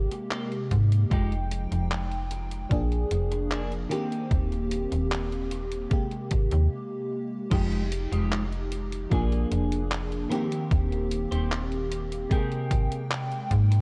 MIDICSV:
0, 0, Header, 1, 6, 480
1, 0, Start_track
1, 0, Tempo, 800000
1, 668, Time_signature, 4, 2, 24, 8
1, 8287, End_track
2, 0, Start_track
2, 0, Title_t, "Clean electric guitar"
2, 0, Program_c, 0, 27
2, 186, Note_on_c, 0, 58, 84
2, 190, Note_on_c, 0, 60, 68
2, 193, Note_on_c, 0, 67, 76
2, 310, Note_off_c, 0, 58, 0
2, 311, Note_off_c, 0, 60, 0
2, 311, Note_off_c, 0, 67, 0
2, 665, Note_on_c, 0, 56, 108
2, 667, Note_on_c, 0, 63, 97
2, 671, Note_on_c, 0, 67, 101
2, 790, Note_off_c, 0, 56, 0
2, 790, Note_off_c, 0, 63, 0
2, 790, Note_off_c, 0, 67, 0
2, 2107, Note_on_c, 0, 58, 86
2, 2109, Note_on_c, 0, 62, 70
2, 2113, Note_on_c, 0, 68, 78
2, 2231, Note_off_c, 0, 58, 0
2, 2231, Note_off_c, 0, 62, 0
2, 2231, Note_off_c, 0, 68, 0
2, 2345, Note_on_c, 0, 67, 87
2, 2347, Note_on_c, 0, 63, 81
2, 2350, Note_on_c, 0, 60, 89
2, 2733, Note_off_c, 0, 60, 0
2, 2733, Note_off_c, 0, 63, 0
2, 2734, Note_off_c, 0, 67, 0
2, 4505, Note_on_c, 0, 56, 109
2, 4508, Note_on_c, 0, 63, 96
2, 4510, Note_on_c, 0, 65, 87
2, 4513, Note_on_c, 0, 67, 103
2, 4689, Note_off_c, 0, 56, 0
2, 4689, Note_off_c, 0, 63, 0
2, 4689, Note_off_c, 0, 67, 0
2, 4690, Note_off_c, 0, 65, 0
2, 4870, Note_on_c, 0, 67, 97
2, 4871, Note_on_c, 0, 65, 81
2, 4874, Note_on_c, 0, 63, 66
2, 4876, Note_on_c, 0, 56, 75
2, 5050, Note_off_c, 0, 56, 0
2, 5050, Note_off_c, 0, 63, 0
2, 5050, Note_off_c, 0, 65, 0
2, 5050, Note_off_c, 0, 67, 0
2, 5466, Note_on_c, 0, 58, 89
2, 5468, Note_on_c, 0, 62, 68
2, 5472, Note_on_c, 0, 65, 66
2, 5475, Note_on_c, 0, 68, 81
2, 5889, Note_off_c, 0, 58, 0
2, 5889, Note_off_c, 0, 62, 0
2, 5889, Note_off_c, 0, 65, 0
2, 5890, Note_off_c, 0, 68, 0
2, 6183, Note_on_c, 0, 70, 107
2, 6187, Note_on_c, 0, 67, 84
2, 6189, Note_on_c, 0, 63, 72
2, 6190, Note_on_c, 0, 60, 82
2, 6667, Note_off_c, 0, 60, 0
2, 6667, Note_off_c, 0, 63, 0
2, 6667, Note_off_c, 0, 67, 0
2, 6667, Note_off_c, 0, 70, 0
2, 6786, Note_on_c, 0, 72, 89
2, 6789, Note_on_c, 0, 67, 86
2, 6792, Note_on_c, 0, 63, 77
2, 6793, Note_on_c, 0, 60, 75
2, 6968, Note_off_c, 0, 60, 0
2, 6968, Note_off_c, 0, 67, 0
2, 6968, Note_off_c, 0, 72, 0
2, 6969, Note_off_c, 0, 63, 0
2, 7385, Note_on_c, 0, 60, 86
2, 7388, Note_on_c, 0, 67, 74
2, 7391, Note_on_c, 0, 68, 78
2, 7393, Note_on_c, 0, 70, 83
2, 7809, Note_off_c, 0, 60, 0
2, 7809, Note_off_c, 0, 67, 0
2, 7809, Note_off_c, 0, 68, 0
2, 7809, Note_off_c, 0, 70, 0
2, 8287, End_track
3, 0, Start_track
3, 0, Title_t, "FM electric piano"
3, 0, Program_c, 1, 5
3, 0, Control_c, 1, 64, 127
3, 0, Note_on_c, 1, 48, 79
3, 0, Note_on_c, 1, 56, 75
3, 0, Note_on_c, 1, 58, 72
3, 0, Note_on_c, 1, 67, 87
3, 617, Note_off_c, 1, 48, 0
3, 619, Note_off_c, 1, 56, 0
3, 623, Note_off_c, 1, 58, 0
3, 626, Note_off_c, 1, 67, 0
3, 661, Note_on_c, 1, 53, 74
3, 667, Note_on_c, 1, 56, 70
3, 674, Note_on_c, 1, 63, 69
3, 676, Control_c, 1, 64, 0
3, 680, Note_on_c, 1, 79, 89
3, 765, Control_c, 1, 64, 127
3, 1577, Note_off_c, 1, 53, 0
3, 1581, Note_off_c, 1, 56, 0
3, 1584, Note_off_c, 1, 63, 0
3, 1587, Note_off_c, 1, 79, 0
3, 1618, Note_on_c, 1, 53, 82
3, 1624, Note_on_c, 1, 58, 72
3, 1631, Note_on_c, 1, 62, 76
3, 1636, Control_c, 1, 64, 0
3, 1636, Note_on_c, 1, 68, 91
3, 1728, Control_c, 1, 64, 127
3, 2296, Note_off_c, 1, 53, 0
3, 2299, Note_off_c, 1, 58, 0
3, 2303, Note_off_c, 1, 62, 0
3, 2305, Note_off_c, 1, 68, 0
3, 2337, Note_on_c, 1, 51, 92
3, 2343, Note_on_c, 1, 58, 82
3, 2348, Note_on_c, 1, 60, 85
3, 2354, Note_on_c, 1, 67, 101
3, 2356, Control_c, 1, 64, 0
3, 2445, Control_c, 1, 64, 127
3, 3495, Note_off_c, 1, 51, 0
3, 3499, Note_off_c, 1, 58, 0
3, 3501, Note_off_c, 1, 60, 0
3, 3504, Note_off_c, 1, 67, 0
3, 3540, Note_on_c, 1, 48, 78
3, 3546, Note_on_c, 1, 56, 71
3, 3552, Note_on_c, 1, 58, 74
3, 3556, Control_c, 1, 64, 0
3, 3559, Note_on_c, 1, 67, 88
3, 3655, Control_c, 1, 64, 127
3, 4457, Note_off_c, 1, 48, 0
3, 4460, Note_off_c, 1, 56, 0
3, 4463, Note_off_c, 1, 58, 0
3, 4467, Note_off_c, 1, 67, 0
3, 4501, Note_on_c, 1, 53, 79
3, 4506, Note_on_c, 1, 56, 71
3, 4512, Note_on_c, 1, 63, 74
3, 4514, Control_c, 1, 64, 0
3, 4518, Note_on_c, 1, 67, 83
3, 4621, Control_c, 1, 64, 127
3, 5417, Note_off_c, 1, 53, 0
3, 5420, Note_off_c, 1, 56, 0
3, 5423, Note_off_c, 1, 63, 0
3, 5426, Note_off_c, 1, 67, 0
3, 5460, Note_on_c, 1, 53, 78
3, 5466, Note_on_c, 1, 58, 77
3, 5472, Note_on_c, 1, 62, 75
3, 5475, Control_c, 1, 64, 0
3, 5479, Note_on_c, 1, 68, 86
3, 5575, Control_c, 1, 64, 127
3, 6137, Note_off_c, 1, 53, 0
3, 6140, Note_off_c, 1, 58, 0
3, 6143, Note_off_c, 1, 62, 0
3, 6146, Note_off_c, 1, 68, 0
3, 6177, Note_on_c, 1, 51, 94
3, 6184, Note_on_c, 1, 58, 86
3, 6190, Note_on_c, 1, 60, 86
3, 6195, Note_on_c, 1, 67, 102
3, 6196, Control_c, 1, 64, 0
3, 6305, Control_c, 1, 64, 127
3, 7336, Note_off_c, 1, 51, 0
3, 7339, Note_off_c, 1, 58, 0
3, 7342, Note_off_c, 1, 60, 0
3, 7345, Note_off_c, 1, 67, 0
3, 7378, Note_on_c, 1, 48, 85
3, 7383, Note_on_c, 1, 56, 76
3, 7390, Note_on_c, 1, 58, 77
3, 7395, Note_on_c, 1, 79, 95
3, 7396, Control_c, 1, 64, 0
3, 7490, Control_c, 1, 64, 127
3, 8287, Note_off_c, 1, 48, 0
3, 8287, Note_off_c, 1, 56, 0
3, 8287, Note_off_c, 1, 58, 0
3, 8287, Note_off_c, 1, 79, 0
3, 8287, End_track
4, 0, Start_track
4, 0, Title_t, "FM bass"
4, 0, Program_c, 2, 39
4, 427, Note_on_c, 2, 44, 94
4, 630, Note_off_c, 2, 44, 0
4, 667, Note_on_c, 2, 29, 99
4, 999, Note_off_c, 2, 29, 0
4, 1029, Note_on_c, 2, 29, 83
4, 1598, Note_off_c, 2, 29, 0
4, 1626, Note_on_c, 2, 34, 82
4, 1830, Note_off_c, 2, 34, 0
4, 1867, Note_on_c, 2, 29, 85
4, 2318, Note_off_c, 2, 29, 0
4, 2586, Note_on_c, 2, 27, 95
4, 2919, Note_off_c, 2, 27, 0
4, 2951, Note_on_c, 2, 27, 86
4, 3518, Note_off_c, 2, 27, 0
4, 3788, Note_on_c, 2, 32, 86
4, 3891, Note_off_c, 2, 32, 0
4, 3911, Note_on_c, 2, 39, 95
4, 4010, Note_off_c, 2, 39, 0
4, 4508, Note_on_c, 2, 29, 98
4, 4840, Note_off_c, 2, 29, 0
4, 4870, Note_on_c, 2, 29, 84
4, 5438, Note_off_c, 2, 29, 0
4, 5468, Note_on_c, 2, 34, 84
4, 5671, Note_off_c, 2, 34, 0
4, 5708, Note_on_c, 2, 29, 85
4, 6159, Note_off_c, 2, 29, 0
4, 6427, Note_on_c, 2, 27, 98
4, 6759, Note_off_c, 2, 27, 0
4, 6789, Note_on_c, 2, 27, 85
4, 7357, Note_off_c, 2, 27, 0
4, 7627, Note_on_c, 2, 32, 87
4, 7731, Note_off_c, 2, 32, 0
4, 8105, Note_on_c, 2, 44, 93
4, 8287, Note_off_c, 2, 44, 0
4, 8287, End_track
5, 0, Start_track
5, 0, Title_t, "Muted clean electric guitar strokes"
5, 70, Note_on_c, 9, 29, 104
5, 130, Note_off_c, 9, 29, 0
5, 427, Note_on_c, 9, 29, 31
5, 487, Note_off_c, 9, 29, 0
5, 908, Note_on_c, 9, 29, 31
5, 968, Note_off_c, 9, 29, 0
5, 1031, Note_on_c, 9, 29, 78
5, 1091, Note_off_c, 9, 29, 0
5, 1390, Note_on_c, 9, 29, 89
5, 1450, Note_off_c, 9, 29, 0
5, 1510, Note_on_c, 9, 29, 30
5, 1570, Note_off_c, 9, 29, 0
5, 1749, Note_on_c, 9, 29, 31
5, 1809, Note_off_c, 9, 29, 0
5, 1990, Note_on_c, 9, 29, 112
5, 2050, Note_off_c, 9, 29, 0
5, 2826, Note_on_c, 9, 29, 28
5, 2886, Note_off_c, 9, 29, 0
5, 2948, Note_on_c, 9, 29, 88
5, 3008, Note_off_c, 9, 29, 0
5, 3068, Note_on_c, 9, 29, 30
5, 3128, Note_off_c, 9, 29, 0
5, 3309, Note_on_c, 9, 29, 88
5, 3369, Note_off_c, 9, 29, 0
5, 3431, Note_on_c, 9, 29, 31
5, 3491, Note_off_c, 9, 29, 0
5, 3672, Note_on_c, 9, 29, 34
5, 3732, Note_off_c, 9, 29, 0
5, 3909, Note_on_c, 9, 29, 116
5, 3969, Note_off_c, 9, 29, 0
5, 5229, Note_on_c, 9, 29, 34
5, 5289, Note_off_c, 9, 29, 0
5, 7145, Note_on_c, 9, 29, 33
5, 7205, Note_off_c, 9, 29, 0
5, 8226, Note_on_c, 9, 29, 96
5, 8286, Note_off_c, 9, 29, 0
5, 8287, End_track
6, 0, Start_track
6, 0, Title_t, "Drums"
6, 70, Note_on_c, 9, 42, 51
6, 130, Note_off_c, 9, 42, 0
6, 186, Note_on_c, 9, 39, 111
6, 186, Note_on_c, 9, 42, 50
6, 246, Note_off_c, 9, 39, 0
6, 246, Note_off_c, 9, 42, 0
6, 311, Note_on_c, 9, 42, 24
6, 371, Note_off_c, 9, 42, 0
6, 427, Note_on_c, 9, 42, 85
6, 428, Note_on_c, 9, 36, 55
6, 487, Note_off_c, 9, 42, 0
6, 488, Note_off_c, 9, 36, 0
6, 552, Note_on_c, 9, 42, 50
6, 612, Note_off_c, 9, 42, 0
6, 668, Note_on_c, 9, 36, 112
6, 670, Note_on_c, 9, 42, 50
6, 728, Note_off_c, 9, 36, 0
6, 730, Note_off_c, 9, 42, 0
6, 792, Note_on_c, 9, 42, 26
6, 852, Note_off_c, 9, 42, 0
6, 908, Note_on_c, 9, 42, 90
6, 968, Note_off_c, 9, 42, 0
6, 1031, Note_on_c, 9, 42, 48
6, 1091, Note_off_c, 9, 42, 0
6, 1148, Note_on_c, 9, 39, 114
6, 1148, Note_on_c, 9, 42, 52
6, 1208, Note_off_c, 9, 39, 0
6, 1208, Note_off_c, 9, 42, 0
6, 1269, Note_on_c, 9, 42, 24
6, 1329, Note_off_c, 9, 42, 0
6, 1386, Note_on_c, 9, 42, 86
6, 1446, Note_off_c, 9, 42, 0
6, 1509, Note_on_c, 9, 42, 51
6, 1569, Note_off_c, 9, 42, 0
6, 1627, Note_on_c, 9, 36, 109
6, 1628, Note_on_c, 9, 42, 49
6, 1687, Note_off_c, 9, 36, 0
6, 1688, Note_off_c, 9, 42, 0
6, 1752, Note_on_c, 9, 42, 26
6, 1812, Note_off_c, 9, 42, 0
6, 1868, Note_on_c, 9, 42, 84
6, 1928, Note_off_c, 9, 42, 0
6, 1990, Note_on_c, 9, 42, 50
6, 2050, Note_off_c, 9, 42, 0
6, 2107, Note_on_c, 9, 39, 112
6, 2107, Note_on_c, 9, 42, 52
6, 2167, Note_off_c, 9, 39, 0
6, 2167, Note_off_c, 9, 42, 0
6, 2231, Note_on_c, 9, 42, 25
6, 2291, Note_off_c, 9, 42, 0
6, 2348, Note_on_c, 9, 42, 89
6, 2408, Note_off_c, 9, 42, 0
6, 2473, Note_on_c, 9, 42, 50
6, 2533, Note_off_c, 9, 42, 0
6, 2586, Note_on_c, 9, 36, 111
6, 2588, Note_on_c, 9, 42, 53
6, 2646, Note_off_c, 9, 36, 0
6, 2648, Note_off_c, 9, 42, 0
6, 2712, Note_on_c, 9, 42, 26
6, 2772, Note_off_c, 9, 42, 0
6, 2827, Note_on_c, 9, 42, 94
6, 2887, Note_off_c, 9, 42, 0
6, 2951, Note_on_c, 9, 42, 53
6, 3011, Note_off_c, 9, 42, 0
6, 3069, Note_on_c, 9, 39, 122
6, 3069, Note_on_c, 9, 42, 56
6, 3129, Note_off_c, 9, 39, 0
6, 3129, Note_off_c, 9, 42, 0
6, 3193, Note_on_c, 9, 42, 26
6, 3253, Note_off_c, 9, 42, 0
6, 3307, Note_on_c, 9, 42, 93
6, 3367, Note_off_c, 9, 42, 0
6, 3430, Note_on_c, 9, 42, 54
6, 3490, Note_off_c, 9, 42, 0
6, 3546, Note_on_c, 9, 42, 51
6, 3547, Note_on_c, 9, 36, 112
6, 3606, Note_off_c, 9, 42, 0
6, 3607, Note_off_c, 9, 36, 0
6, 3668, Note_on_c, 9, 42, 28
6, 3728, Note_off_c, 9, 42, 0
6, 3785, Note_on_c, 9, 42, 91
6, 3788, Note_on_c, 9, 36, 93
6, 3845, Note_off_c, 9, 42, 0
6, 3848, Note_off_c, 9, 36, 0
6, 3908, Note_on_c, 9, 42, 51
6, 3968, Note_off_c, 9, 42, 0
6, 4508, Note_on_c, 9, 36, 117
6, 4508, Note_on_c, 9, 42, 55
6, 4508, Note_on_c, 9, 49, 102
6, 4568, Note_off_c, 9, 36, 0
6, 4568, Note_off_c, 9, 42, 0
6, 4568, Note_off_c, 9, 49, 0
6, 4632, Note_on_c, 9, 42, 29
6, 4692, Note_off_c, 9, 42, 0
6, 4750, Note_on_c, 9, 42, 99
6, 4810, Note_off_c, 9, 42, 0
6, 4874, Note_on_c, 9, 42, 53
6, 4934, Note_off_c, 9, 42, 0
6, 4992, Note_on_c, 9, 39, 126
6, 4992, Note_on_c, 9, 42, 57
6, 5052, Note_off_c, 9, 39, 0
6, 5052, Note_off_c, 9, 42, 0
6, 5114, Note_on_c, 9, 42, 27
6, 5174, Note_off_c, 9, 42, 0
6, 5231, Note_on_c, 9, 42, 96
6, 5291, Note_off_c, 9, 42, 0
6, 5354, Note_on_c, 9, 42, 53
6, 5414, Note_off_c, 9, 42, 0
6, 5468, Note_on_c, 9, 36, 121
6, 5470, Note_on_c, 9, 42, 54
6, 5528, Note_off_c, 9, 36, 0
6, 5530, Note_off_c, 9, 42, 0
6, 5592, Note_on_c, 9, 42, 29
6, 5652, Note_off_c, 9, 42, 0
6, 5709, Note_on_c, 9, 42, 97
6, 5769, Note_off_c, 9, 42, 0
6, 5832, Note_on_c, 9, 42, 55
6, 5892, Note_off_c, 9, 42, 0
6, 5949, Note_on_c, 9, 39, 121
6, 5949, Note_on_c, 9, 42, 54
6, 6009, Note_off_c, 9, 39, 0
6, 6009, Note_off_c, 9, 42, 0
6, 6072, Note_on_c, 9, 42, 28
6, 6132, Note_off_c, 9, 42, 0
6, 6190, Note_on_c, 9, 42, 97
6, 6250, Note_off_c, 9, 42, 0
6, 6312, Note_on_c, 9, 42, 58
6, 6372, Note_off_c, 9, 42, 0
6, 6427, Note_on_c, 9, 36, 125
6, 6429, Note_on_c, 9, 42, 52
6, 6487, Note_off_c, 9, 36, 0
6, 6489, Note_off_c, 9, 42, 0
6, 6553, Note_on_c, 9, 42, 28
6, 6613, Note_off_c, 9, 42, 0
6, 6667, Note_on_c, 9, 42, 98
6, 6727, Note_off_c, 9, 42, 0
6, 6792, Note_on_c, 9, 42, 56
6, 6852, Note_off_c, 9, 42, 0
6, 6910, Note_on_c, 9, 39, 123
6, 6910, Note_on_c, 9, 42, 60
6, 6970, Note_off_c, 9, 39, 0
6, 6970, Note_off_c, 9, 42, 0
6, 7031, Note_on_c, 9, 42, 27
6, 7091, Note_off_c, 9, 42, 0
6, 7150, Note_on_c, 9, 42, 95
6, 7210, Note_off_c, 9, 42, 0
6, 7273, Note_on_c, 9, 42, 57
6, 7333, Note_off_c, 9, 42, 0
6, 7386, Note_on_c, 9, 36, 125
6, 7389, Note_on_c, 9, 42, 57
6, 7446, Note_off_c, 9, 36, 0
6, 7449, Note_off_c, 9, 42, 0
6, 7511, Note_on_c, 9, 42, 29
6, 7571, Note_off_c, 9, 42, 0
6, 7626, Note_on_c, 9, 36, 100
6, 7627, Note_on_c, 9, 42, 97
6, 7686, Note_off_c, 9, 36, 0
6, 7687, Note_off_c, 9, 42, 0
6, 7752, Note_on_c, 9, 42, 56
6, 7812, Note_off_c, 9, 42, 0
6, 7868, Note_on_c, 9, 39, 124
6, 7868, Note_on_c, 9, 42, 54
6, 7928, Note_off_c, 9, 39, 0
6, 7928, Note_off_c, 9, 42, 0
6, 7990, Note_on_c, 9, 42, 27
6, 8050, Note_off_c, 9, 42, 0
6, 8106, Note_on_c, 9, 36, 58
6, 8107, Note_on_c, 9, 42, 97
6, 8166, Note_off_c, 9, 36, 0
6, 8167, Note_off_c, 9, 42, 0
6, 8230, Note_on_c, 9, 42, 57
6, 8287, Note_off_c, 9, 42, 0
6, 8287, End_track
0, 0, End_of_file